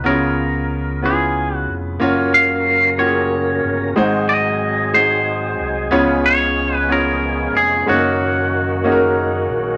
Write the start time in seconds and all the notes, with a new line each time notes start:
0.04 C#2 C#3 B3 C#4 E4 G#4 A#4 C#5
0.11 F4
1.02 B3 C#4 E4 G#4 B4
1.09 F4
1.56 F#4
1.68 F1
2.00 F#1 C#3 F#3 A#3 C#4 F4 F#4 A#4 C#5
2.34 F5
2.98 A#3 C#4 F4 F#4 G4 C#5
3.06 G#4
3.64 G1
3.96 G#1 G#2 G#3 C4 D#4 F#4 G#4 C5
4.29 D#5
4.94 G#3 C4 D#4 F#4 G#4 C5
5.60 C2
5.91 C#2 C#3 F3 B3 C#4 F4 G#4 C#5
6.26 C#5
6.76 B4
6.89 B3 C#4 F4 G#4 A#4 C#5
7.55 F1 G#4
7.86 F#1 D#3 F#3 G#3 A#3 C#4 D#4 F#4 C#5
7.93 A#3
8.84 A#3 C#4 D#4 F#4 G#4
8.92 A#4
9.50 A#1